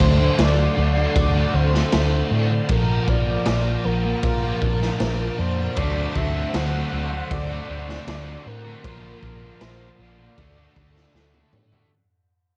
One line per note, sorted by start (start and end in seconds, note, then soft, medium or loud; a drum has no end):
0.00 0.28 D2 medium
0.00 0.37 D3 medium
0.00 0.38 F#3 medium
0.00 0.22 A3 loud
0.00 0.77 A3 medium
0.00 0.19 D4 medium
0.00 2.66 A4 medium
0.00 0.40 C5 loud
0.00 2.66 D5 medium
0.00 2.66 F#5 medium
0.00 2.66 C6 medium
0.00 kick medium
0.19 0.40 A3 medium
0.19 0.41 D4 medium
0.39 0.67 D2 medium
0.39 0.75 D3 medium
0.39 2.31 F#3 medium
0.39 0.78 A3 loud
0.39 0.79 D4 loud
0.39 1.16 D5 loud
0.39 snare loud
0.39 crash medium
0.76 1.05 D2 medium
0.76 1.35 D3 medium
0.76 1.92 A3 medium
0.76 0.97 A3 medium
0.76 0.96 D4 medium
0.97 muted distorted electric guitar stroke medium
1.16 1.44 D2 medium
1.16 2.70 F#4 medium
1.16 1.56 D5 loud
1.16 kick loud
1.16 crash medium
1.35 1.55 A3 medium
1.35 1.56 D4 medium
1.54 1.82 D2 medium
1.54 1.91 D3 medium
1.54 1.75 A3 medium
1.54 2.30 C4 medium
1.54 1.73 D4 medium
1.54 2.32 C5 loud
1.73 1.93 A3 medium
1.73 1.95 D4 medium
1.73 snare soft
1.92 2.21 D2 medium
1.92 2.30 D3 medium
1.92 5.43 A3 medium
1.92 2.32 A3 medium
1.92 2.33 D4 loud
1.92 snare loud
1.92 crash medium
2.31 2.59 A2 medium
2.31 2.67 D3 medium
2.31 2.51 A3 medium
2.31 2.69 C4 medium
2.31 2.51 D4 medium
2.51 muted distorted electric guitar stroke medium
2.69 2.97 A#1 medium
2.69 3.44 A#2 medium
2.69 3.45 F3 medium
2.69 3.28 F3 medium
2.69 3.25 A#3 medium
2.69 5.74 A#4 medium
2.69 3.10 A#4 medium
2.69 5.74 F5 medium
2.69 8.81 A5 medium
2.69 11.88 D6 medium
2.69 kick loud
2.69 crash medium
3.08 3.36 A#1 medium
3.08 3.86 D5 loud
3.08 kick medium
3.27 3.46 F3 medium
3.27 3.47 A#3 medium
3.45 3.74 A#1 medium
3.45 3.83 A#2 loud
3.45 5.39 F3 medium
3.45 3.84 F3 loud
3.45 3.85 A#3 loud
3.45 snare loud
3.45 crash medium
3.84 4.13 A#1 medium
3.84 4.42 A#2 medium
3.84 4.04 F3 medium
3.84 4.03 A#3 medium
3.84 4.22 A#4 medium
4.04 muted distorted electric guitar stroke medium
4.23 4.51 A#1 loud
4.23 5.77 F4 medium
4.23 5.41 A#4 loud
4.23 kick loud
4.23 crash medium
4.42 4.61 F3 medium
4.42 4.63 A#3 medium
4.61 4.89 A#1 medium
4.61 4.98 A#2 medium
4.61 4.82 F3 medium
4.61 4.79 A#3 medium
4.61 5.38 D4 medium
4.61 kick medium
4.80 5.00 F3 medium
4.80 5.01 A#3 medium
4.80 snare soft
4.99 5.28 A#1 medium
4.99 5.37 A#2 medium
4.99 5.39 F3 medium
4.99 5.40 A#3 loud
4.99 snare loud
4.99 crash medium
5.38 5.67 F2 medium
5.38 5.75 A#2 medium
5.38 5.58 F3 medium
5.38 5.57 A#3 medium
5.38 7.69 D4 medium
5.38 5.79 C5 medium
5.58 muted distorted electric guitar stroke medium
5.76 6.05 D2 medium
5.76 6.14 D3 loud
5.76 6.52 D3 medium
5.76 6.53 F#3 medium
5.76 6.16 A3 loud
5.76 6.37 A3 loud
5.76 6.16 C4 loud
5.76 6.34 D4 loud
5.76 6.17 F#4 loud
5.76 8.82 C5 medium
5.76 6.18 D5 loud
5.76 8.81 F#5 medium
5.76 kick loud
5.76 crash medium
6.15 6.43 D2 loud
6.15 6.52 D3 medium
6.15 9.65 A3 medium
6.15 6.54 A3 medium
6.15 6.54 C4 loud
6.15 6.55 F#4 loud
6.15 6.56 E5 loud
6.15 kick medium
6.34 6.54 A3 medium
6.34 6.55 D4 medium
6.53 6.82 D2 medium
6.53 6.91 D3 medium
6.53 8.46 F#3 medium
6.53 6.76 A3 loud
6.53 6.93 A3 medium
6.53 6.73 C4 loud
6.53 6.95 D4 loud
6.53 6.72 F#4 loud
6.53 7.30 F#5 loud
6.53 snare loud
6.53 crash medium
6.73 6.93 A3 medium
6.73 6.93 C4 medium
6.73 6.94 F#4 medium
6.92 7.20 D2 medium
6.92 7.50 D3 medium
6.92 7.14 A3 medium
6.92 7.12 A3 medium
6.92 7.11 C4 medium
6.92 7.12 D4 medium
6.92 7.10 F#4 medium
7.11 7.52 A3 medium
7.11 7.50 C4 medium
7.11 7.48 F#4 medium
7.11 muted distorted electric guitar stroke soft
7.31 7.59 D2 medium
7.31 8.84 F#4 medium
7.31 8.48 D5 loud
7.31 kick loud
7.31 crash medium
7.49 7.70 A3 medium
7.49 7.69 A3 medium
7.49 7.70 C4 medium
7.49 7.71 D4 medium
7.49 7.71 F#4 medium
7.68 7.97 D2 medium
7.68 8.06 D3 medium
7.68 8.08 A3 medium
7.68 7.90 A3 medium
7.68 8.45 C4 medium
7.68 8.08 C4 medium
7.68 7.87 D4 medium
7.68 8.09 F#4 medium
7.88 8.08 A3 medium
7.88 8.09 D4 medium
7.88 snare soft
8.07 8.35 D2 medium
8.07 8.44 D3 medium
8.07 8.46 D3 medium
8.07 8.29 A3 medium
8.07 8.46 A3 medium
8.07 8.27 C4 loud
8.07 8.47 D4 loud
8.07 8.25 F#4 loud
8.07 snare loud
8.07 crash medium
8.26 8.47 A3 medium
8.26 8.46 C4 medium
8.26 8.46 F#4 medium
8.45 8.74 A2 medium
8.45 8.82 D3 medium
8.45 8.65 A3 medium
8.45 8.85 C4 medium
8.45 8.64 D4 medium
8.45 9.63 A#4 loud
8.45 muted overdriven electric guitar stroke soft
8.65 8.86 A3 medium
8.65 8.83 C4 medium
8.65 8.82 F#4 medium
8.65 muted distorted electric guitar stroke medium
8.83 9.12 A#1 loud
8.83 9.59 A#2 loud
8.83 9.60 A#2 loud
8.83 9.22 D3 loud
8.83 9.43 F3 loud
8.83 9.60 F3 medium
8.83 9.41 A#3 loud
8.83 9.23 A#3 loud
8.83 9.24 D4 loud
8.83 10.36 A#4 medium
8.83 10.36 F5 medium
8.83 10.36 A5 medium
8.83 kick loud
8.83 crash medium
8.87 9.25 F4 loud
9.23 9.50 A#1 medium
9.23 9.61 D3 medium
9.23 9.62 A#3 medium
9.23 9.62 D4 medium
9.23 9.63 F4 medium
9.23 kick medium
9.42 9.61 F3 medium
9.42 9.62 A#3 medium
9.60 9.89 A#1 medium
9.60 9.98 A#2 loud
9.60 10.19 A#2 medium
9.60 9.99 D3 loud
9.60 10.38 F3 medium
9.60 10.00 F3 loud
9.60 10.01 A#3 medium
9.60 9.82 A#3 medium
9.60 9.81 D4 loud
9.60 10.02 C5 medium
9.60 snare loud
9.60 crash medium
9.64 9.79 F4 loud
9.81 10.00 A#3 medium
9.81 10.01 D4 medium
9.81 10.01 F4 medium
9.99 10.27 A#1 medium
9.99 10.36 A#2 medium
9.99 10.36 D3 medium
9.99 10.18 F3 medium
9.99 10.20 A#3 medium
9.99 10.18 A#3 medium
9.99 10.19 D4 medium
9.99 10.17 F4 medium
9.99 11.15 D5 loud
10.19 10.37 A#3 medium
10.19 10.36 D4 medium
10.19 10.36 F4 medium
10.19 muted distorted electric guitar stroke soft
10.37 10.66 D2 medium
10.37 10.75 D3 medium
10.37 11.14 A3 medium
10.37 10.58 A3 medium
10.37 10.59 A3 medium
10.37 10.56 D4 loud
10.37 10.58 D4 loud
10.37 10.56 F#4 loud
10.37 11.90 A4 medium
10.37 11.90 D5 medium
10.37 11.90 F#5 medium
10.37 kick loud
10.37 crash medium
10.57 10.76 A3 medium
10.57 10.78 D4 medium
10.57 10.77 D4 medium
10.57 10.78 F#4 medium
10.76 11.04 D2 medium
10.76 11.13 D3 medium
10.76 11.14 A3 medium
10.76 10.97 A3 medium
10.76 11.52 D4 medium
10.76 11.15 D4 medium
10.76 10.94 D4 medium
10.76 11.16 F#4 medium
10.76 kick medium
10.95 11.14 A3 medium
10.95 11.15 D4 medium
10.95 snare soft
11.14 11.42 D2 medium
11.14 11.51 D3 medium
11.14 11.53 D3 medium
11.14 11.92 A3 medium
11.14 11.35 A3 medium
11.14 11.53 A3 medium
11.14 11.34 D4 medium
11.14 11.54 D4 loud
11.14 11.32 F#4 medium
11.14 snare medium
11.34 11.53 A3 medium
11.34 11.53 D4 medium
11.34 11.53 F#4 medium
11.34 high tom medium
11.52 11.81 A2 medium
11.52 11.89 D3 medium
11.52 11.71 A3 medium
11.52 11.92 D4 medium
11.52 11.71 D4 medium
11.52 muted overdriven electric guitar stroke soft
11.52 mid tom medium
11.72 11.91 A3 medium
11.72 11.90 D4 medium
11.72 11.89 F#4 medium
11.72 muted distorted electric guitar stroke medium
11.72 floor tom medium